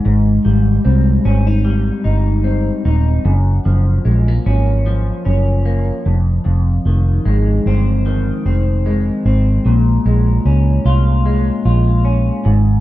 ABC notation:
X:1
M:4/4
L:1/16
Q:"Swing 16ths" 1/4=75
K:Bbdor
V:1 name="Clean electric guitar"
A,,2 G,2 C2 D E G,2 E2 C2 E2 | _G,,2 F,2 A, B, D2 F,2 D2 B,2 F,,2 | F,,2 E,2 A,2 C2 E,2 C2 A,2 C2 | B,,2 A,2 D2 F2 A,2 F2 D2 A,,2 |]
V:2 name="Fingered electric bass" clef=bass
A,,,2 A,,,2 C,,2 A,,,4 G,,,4 E,,,2 | _G,,,2 G,,,2 B,,,2 A,,,4 G,,,4 F,,,2 | F,,,2 F,,,2 A,,,2 G,,,4 F,,,4 A,,,2 | B,,,2 B,,,2 D,,2 C,,4 B,,,4 A,,,2 |]